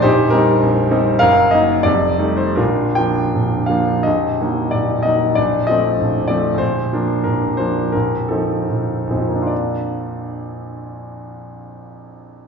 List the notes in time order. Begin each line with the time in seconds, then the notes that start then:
0.02 A#0 A#1 D#4 G4 C5
0.30 G3 C4 D#4 A#4
0.62 A#0 A#1
0.91 G3 C4 D#4
1.19 F#1 F#2 A#4 F5
1.51 F#3 A#3 D#4 D#5
1.83 F1 F2 D5
2.19 G3 A3 D#4
2.37 C5
2.56 A#0 A#1 D4 F4 A#4
2.95 F3 A#3 D4 G5
3.34 A#0 A#1
3.66 F3 A#3 D4 F5
4.03 A#0 A#1 D#5
4.41 F#3 A#3 D#4
4.71 A#0 A#1 D5
5.03 F#3 A#3 D#4 D#5
5.35 A#0 A#1 D5
5.67 F3 A3 C4 D#5
5.99 A#0 A#1
6.27 F3 A3 C4 D5
6.54 A#1
6.58 A#0 C5
6.93 F3 A#3 D4
7.24 A#0 A#1 A#4
7.57 F3 A#3 D4 C5
7.92 A#0 A#1 A#4
8.28 F3 C4 D#4 A4
8.69 A#0 A#1
9.07 A#1 F3 C4
9.11 F2 D#4
9.21 F3
9.28 A#3
9.35 D4
9.42 F4
9.47 D5